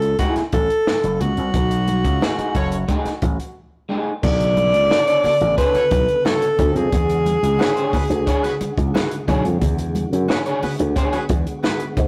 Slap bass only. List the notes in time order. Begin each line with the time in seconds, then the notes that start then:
Already playing: C#2
0.36 muted slap bass stroke
0.53 A1
1.03 F#1
1.20 C#2
1.37 C2
1.54 B1
2.05 C#2
2.38 muted slap bass stroke
2.55 F#1
3.05 muted slap bass stroke
3.22 A1
4.23 B1
4.74 C#2
5.24 muted slap bass stroke
5.41 A1
5.75 muted slap bass stroke
5.91 B1
6.59 D2
6.75 F2
6.93 E2
7.43 C#2
7.93 muted slap bass stroke
8.10 D2
8.61 muted slap bass stroke
8.78 C#2
9.28 B1
9.45 F2
9.62 E2
10.12 F#2
10.63 muted slap bass stroke
10.80 D2
11.14 muted slap bass stroke
11.30 E2
11.97 G#2